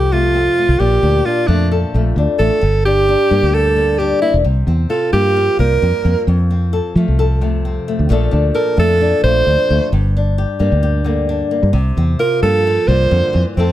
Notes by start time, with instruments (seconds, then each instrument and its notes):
Already playing: fingered electric bass C2, nylon-string guitar F2 F3 A3 C4 A4, alto saxophone G4
0.12 nylon-string guitar C3 A3, alto saxophone F4
0.34 nylon-string guitar C4
0.58 nylon-string guitar A3
0.68 fingered electric bass C2
0.79 fingered electric bass A#1, nylon-string guitar A#2, alto saxophone G4
1.03 fingered electric bass D2, nylon-string guitar D4
1.25 nylon-string guitar D4, alto saxophone F4
1.47 fingered electric bass F2, nylon-string guitar F3 A3, alto saxophone D4
1.71 nylon-string guitar A4
1.94 fingered electric bass A#1, nylon-string guitar F2 A3
2.16 fingered electric bass D2, nylon-string guitar D4
2.39 fingered electric bass A1, nylon-string guitar A3, alto saxophone A4
2.61 fingered electric bass G1, nylon-string guitar G2
2.85 nylon-string guitar D4, alto saxophone G4
3.09 nylon-string guitar D4
3.31 fingered electric bass G2, nylon-string guitar G3 A#3
3.42 fingered electric bass D2
3.54 nylon-string guitar G4, alto saxophone A4
3.76 nylon-string guitar D3 A#3
3.98 nylon-string guitar D4, alto saxophone G4
4.22 nylon-string guitar A#3, alto saxophone E4
4.34 fingered electric bass E1
4.44 fingered electric bass C2, nylon-string guitar C3
4.67 fingered electric bass E2, nylon-string guitar C4
4.90 nylon-string guitar F4, alto saxophone A4
5.12 fingered electric bass G2, nylon-string guitar F3 A#3, alto saxophone G4
5.37 nylon-string guitar F4
5.58 fingered electric bass C2, nylon-string guitar G2 A#3, alto saxophone A#4
5.82 fingered electric bass F2, nylon-string guitar C4
6.04 fingered electric bass F2, nylon-string guitar A#3
6.27 fingered electric bass F2, nylon-string guitar F2
6.50 nylon-string guitar C4
6.73 nylon-string guitar A4
6.95 fingered electric bass F3, nylon-string guitar F3 A3
7.08 fingered electric bass C2
7.19 nylon-string guitar A4
7.41 nylon-string guitar C3 A3
7.65 nylon-string guitar C4
7.88 nylon-string guitar A3
7.99 fingered electric bass D2
8.09 fingered electric bass A#1, nylon-string guitar A#2 F3 A3 D4 A4
8.31 fingered electric bass D2, nylon-string guitar D4
8.54 nylon-string guitar A4, alto saxophone A#4
8.77 fingered electric bass F2, nylon-string guitar F3 A3, alto saxophone A4
9.01 nylon-string guitar D4
9.23 fingered electric bass A#1, nylon-string guitar F2 A3, alto saxophone C5
9.46 fingered electric bass D2, nylon-string guitar D4
9.70 fingered electric bass D2, nylon-string guitar A3
9.92 fingered electric bass G1, nylon-string guitar G2
10.17 nylon-string guitar D4
10.38 nylon-string guitar G4
10.59 fingered electric bass G2, nylon-string guitar G3 A#3
10.72 fingered electric bass D2
10.83 nylon-string guitar G4
11.04 nylon-string guitar D3 A#3
11.29 nylon-string guitar D4
11.51 nylon-string guitar A#3
11.63 fingered electric bass G2
11.73 fingered electric bass C2, nylon-string guitar C3
11.97 fingered electric bass E2, nylon-string guitar C4
12.19 nylon-string guitar F4, alto saxophone A#4
12.42 fingered electric bass G2, nylon-string guitar F3 A#3, alto saxophone A4
12.67 nylon-string guitar F4
12.87 fingered electric bass C2, nylon-string guitar G2 A#3, alto saxophone C5
13.11 fingered electric bass F2, nylon-string guitar D3
13.33 fingered electric bass F2, nylon-string guitar E3
13.57 fingered electric bass F2, nylon-string guitar F2 A3 C4 A4, alto saxophone C4